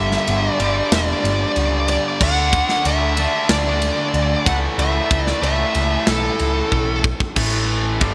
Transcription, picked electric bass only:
0, 0, Header, 1, 2, 480
1, 0, Start_track
1, 0, Tempo, 645161
1, 1643, Time_signature, 4, 2, 24, 8
1, 6058, End_track
2, 0, Start_track
2, 0, Title_t, "Picked electric bass"
2, 0, Program_c, 0, 34
2, 0, Note_on_c, 0, 31, 104
2, 113, Note_off_c, 0, 31, 0
2, 208, Note_on_c, 0, 31, 96
2, 355, Note_off_c, 0, 31, 0
2, 446, Note_on_c, 0, 31, 94
2, 593, Note_off_c, 0, 31, 0
2, 683, Note_on_c, 0, 28, 104
2, 831, Note_off_c, 0, 28, 0
2, 923, Note_on_c, 0, 31, 92
2, 1070, Note_off_c, 0, 31, 0
2, 1166, Note_on_c, 0, 37, 90
2, 1460, Note_off_c, 0, 37, 0
2, 1646, Note_on_c, 0, 38, 105
2, 1940, Note_off_c, 0, 38, 0
2, 2124, Note_on_c, 0, 38, 82
2, 2418, Note_off_c, 0, 38, 0
2, 2599, Note_on_c, 0, 38, 103
2, 2895, Note_off_c, 0, 38, 0
2, 3079, Note_on_c, 0, 38, 79
2, 3228, Note_off_c, 0, 38, 0
2, 3318, Note_on_c, 0, 37, 96
2, 3467, Note_off_c, 0, 37, 0
2, 3558, Note_on_c, 0, 37, 102
2, 3707, Note_off_c, 0, 37, 0
2, 3802, Note_on_c, 0, 37, 94
2, 3950, Note_off_c, 0, 37, 0
2, 4034, Note_on_c, 0, 37, 88
2, 4184, Note_off_c, 0, 37, 0
2, 4282, Note_on_c, 0, 37, 98
2, 4429, Note_off_c, 0, 37, 0
2, 4521, Note_on_c, 0, 35, 107
2, 4669, Note_off_c, 0, 35, 0
2, 4765, Note_on_c, 0, 37, 84
2, 4912, Note_off_c, 0, 37, 0
2, 5001, Note_on_c, 0, 35, 90
2, 5297, Note_off_c, 0, 35, 0
2, 5477, Note_on_c, 0, 33, 95
2, 5931, Note_off_c, 0, 33, 0
2, 5959, Note_on_c, 0, 31, 91
2, 6058, Note_off_c, 0, 31, 0
2, 6058, End_track
0, 0, End_of_file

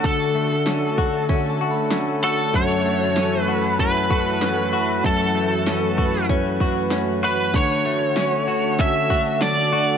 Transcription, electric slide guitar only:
0, 0, Header, 1, 2, 480
1, 0, Start_track
1, 0, Key_signature, 2, "major"
1, 0, Tempo, 625000
1, 34, Time_signature, 4, 2, 24, 8
1, 7662, End_track
2, 0, Start_track
2, 0, Title_t, "Electric slide guitar"
2, 0, Program_c, 0, 29
2, 45, Note_on_c, 0, 69, 83
2, 969, Note_off_c, 0, 69, 0
2, 1719, Note_on_c, 0, 69, 93
2, 1959, Note_on_c, 0, 73, 108
2, 1964, Note_off_c, 0, 69, 0
2, 2635, Note_off_c, 0, 73, 0
2, 2635, Note_on_c, 0, 71, 108
2, 2917, Note_off_c, 0, 71, 0
2, 2920, Note_on_c, 0, 71, 95
2, 3885, Note_off_c, 0, 71, 0
2, 3888, Note_on_c, 0, 69, 81
2, 4810, Note_off_c, 0, 69, 0
2, 5562, Note_on_c, 0, 71, 83
2, 5803, Note_on_c, 0, 73, 98
2, 5805, Note_off_c, 0, 71, 0
2, 6764, Note_on_c, 0, 76, 101
2, 6787, Note_off_c, 0, 73, 0
2, 7234, Note_off_c, 0, 76, 0
2, 7237, Note_on_c, 0, 74, 101
2, 7662, Note_off_c, 0, 74, 0
2, 7662, End_track
0, 0, End_of_file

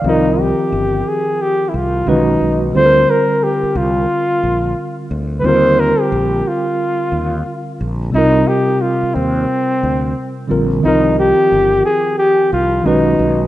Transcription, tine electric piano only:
0, 0, Header, 1, 2, 480
1, 0, Start_track
1, 0, Key_signature, -3, "minor"
1, 0, Tempo, 674157
1, 33, Time_signature, 4, 2, 24, 8
1, 9592, End_track
2, 0, Start_track
2, 0, Title_t, "Tine electric piano"
2, 0, Program_c, 0, 4
2, 0, Note_on_c, 0, 74, 45
2, 0, Note_on_c, 0, 77, 54
2, 12, Note_on_c, 0, 51, 59
2, 29, Note_on_c, 0, 53, 51
2, 41, Note_on_c, 0, 60, 56
2, 55, Note_on_c, 0, 65, 50
2, 67, Note_on_c, 0, 70, 63
2, 174, Note_off_c, 0, 77, 0
2, 176, Note_off_c, 0, 74, 0
2, 1434, Note_off_c, 0, 51, 0
2, 1442, Note_off_c, 0, 53, 0
2, 1448, Note_off_c, 0, 60, 0
2, 1455, Note_off_c, 0, 65, 0
2, 1461, Note_off_c, 0, 70, 0
2, 1462, Note_on_c, 0, 50, 49
2, 1470, Note_on_c, 0, 56, 54
2, 1479, Note_on_c, 0, 61, 52
2, 1481, Note_on_c, 0, 66, 58
2, 1487, Note_on_c, 0, 71, 65
2, 1506, Note_on_c, 0, 51, 60
2, 1525, Note_off_c, 0, 50, 0
2, 1932, Note_on_c, 0, 50, 55
2, 1945, Note_on_c, 0, 55, 52
2, 1951, Note_off_c, 0, 56, 0
2, 1956, Note_off_c, 0, 61, 0
2, 1957, Note_off_c, 0, 66, 0
2, 1960, Note_off_c, 0, 71, 0
2, 1962, Note_on_c, 0, 60, 50
2, 1969, Note_off_c, 0, 51, 0
2, 1971, Note_on_c, 0, 65, 53
2, 1985, Note_on_c, 0, 69, 48
2, 2026, Note_off_c, 0, 69, 0
2, 2034, Note_on_c, 0, 70, 64
2, 3834, Note_off_c, 0, 50, 0
2, 3840, Note_off_c, 0, 55, 0
2, 3848, Note_on_c, 0, 50, 53
2, 3849, Note_off_c, 0, 60, 0
2, 3853, Note_off_c, 0, 65, 0
2, 3861, Note_on_c, 0, 55, 49
2, 3877, Note_on_c, 0, 60, 56
2, 3885, Note_off_c, 0, 70, 0
2, 3887, Note_on_c, 0, 65, 52
2, 3904, Note_on_c, 0, 70, 62
2, 5752, Note_off_c, 0, 50, 0
2, 5758, Note_off_c, 0, 55, 0
2, 5766, Note_off_c, 0, 60, 0
2, 5770, Note_on_c, 0, 48, 56
2, 5771, Note_off_c, 0, 65, 0
2, 5780, Note_off_c, 0, 70, 0
2, 5783, Note_on_c, 0, 55, 53
2, 5793, Note_on_c, 0, 60, 51
2, 5808, Note_on_c, 0, 65, 53
2, 5824, Note_on_c, 0, 70, 60
2, 7433, Note_off_c, 0, 48, 0
2, 7439, Note_off_c, 0, 55, 0
2, 7444, Note_off_c, 0, 60, 0
2, 7452, Note_off_c, 0, 65, 0
2, 7458, Note_on_c, 0, 50, 53
2, 7460, Note_off_c, 0, 70, 0
2, 7466, Note_on_c, 0, 55, 45
2, 7472, Note_on_c, 0, 60, 48
2, 7479, Note_on_c, 0, 65, 47
2, 7486, Note_on_c, 0, 70, 57
2, 7693, Note_on_c, 0, 51, 54
2, 7704, Note_on_c, 0, 53, 50
2, 7705, Note_off_c, 0, 50, 0
2, 7707, Note_off_c, 0, 60, 0
2, 7709, Note_off_c, 0, 55, 0
2, 7716, Note_off_c, 0, 65, 0
2, 7716, Note_on_c, 0, 60, 52
2, 7719, Note_off_c, 0, 70, 0
2, 7732, Note_on_c, 0, 65, 55
2, 7744, Note_on_c, 0, 70, 65
2, 9114, Note_off_c, 0, 51, 0
2, 9120, Note_off_c, 0, 53, 0
2, 9126, Note_off_c, 0, 60, 0
2, 9134, Note_off_c, 0, 65, 0
2, 9137, Note_on_c, 0, 51, 62
2, 9140, Note_off_c, 0, 70, 0
2, 9145, Note_on_c, 0, 56, 53
2, 9153, Note_on_c, 0, 61, 54
2, 9159, Note_on_c, 0, 66, 56
2, 9167, Note_on_c, 0, 71, 66
2, 9592, Note_off_c, 0, 51, 0
2, 9592, Note_off_c, 0, 56, 0
2, 9592, Note_off_c, 0, 61, 0
2, 9592, Note_off_c, 0, 66, 0
2, 9592, Note_off_c, 0, 71, 0
2, 9592, End_track
0, 0, End_of_file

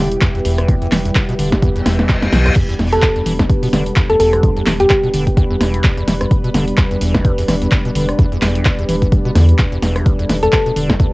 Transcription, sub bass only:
0, 0, Header, 1, 2, 480
1, 0, Start_track
1, 0, Key_signature, 1, "minor"
1, 0, Tempo, 468750
1, 701, Time_signature, 4, 2, 24, 8
1, 11398, End_track
2, 0, Start_track
2, 0, Title_t, "Sub bass"
2, 0, Program_c, 0, 38
2, 0, Note_on_c, 0, 28, 88
2, 157, Note_off_c, 0, 28, 0
2, 461, Note_on_c, 0, 28, 96
2, 637, Note_off_c, 0, 28, 0
2, 941, Note_on_c, 0, 28, 104
2, 1117, Note_off_c, 0, 28, 0
2, 1421, Note_on_c, 0, 28, 77
2, 1597, Note_off_c, 0, 28, 0
2, 1901, Note_on_c, 0, 28, 88
2, 2077, Note_off_c, 0, 28, 0
2, 2381, Note_on_c, 0, 35, 96
2, 2557, Note_off_c, 0, 35, 0
2, 2861, Note_on_c, 0, 28, 100
2, 3037, Note_off_c, 0, 28, 0
2, 3341, Note_on_c, 0, 28, 82
2, 3517, Note_off_c, 0, 28, 0
2, 3821, Note_on_c, 0, 28, 89
2, 3997, Note_off_c, 0, 28, 0
2, 4301, Note_on_c, 0, 28, 98
2, 4477, Note_off_c, 0, 28, 0
2, 4781, Note_on_c, 0, 28, 102
2, 4957, Note_off_c, 0, 28, 0
2, 5261, Note_on_c, 0, 28, 79
2, 5437, Note_off_c, 0, 28, 0
2, 5741, Note_on_c, 0, 28, 88
2, 5917, Note_off_c, 0, 28, 0
2, 6221, Note_on_c, 0, 28, 94
2, 6397, Note_off_c, 0, 28, 0
2, 6701, Note_on_c, 0, 28, 103
2, 6877, Note_off_c, 0, 28, 0
2, 7181, Note_on_c, 0, 28, 80
2, 7358, Note_off_c, 0, 28, 0
2, 7661, Note_on_c, 0, 28, 88
2, 7837, Note_off_c, 0, 28, 0
2, 8142, Note_on_c, 0, 28, 97
2, 8318, Note_off_c, 0, 28, 0
2, 8621, Note_on_c, 0, 28, 100
2, 8797, Note_off_c, 0, 28, 0
2, 9101, Note_on_c, 0, 28, 79
2, 9278, Note_off_c, 0, 28, 0
2, 9581, Note_on_c, 0, 40, 92
2, 9758, Note_off_c, 0, 40, 0
2, 10061, Note_on_c, 0, 28, 85
2, 10237, Note_off_c, 0, 28, 0
2, 10541, Note_on_c, 0, 28, 101
2, 10718, Note_off_c, 0, 28, 0
2, 11021, Note_on_c, 0, 28, 78
2, 11198, Note_off_c, 0, 28, 0
2, 11398, End_track
0, 0, End_of_file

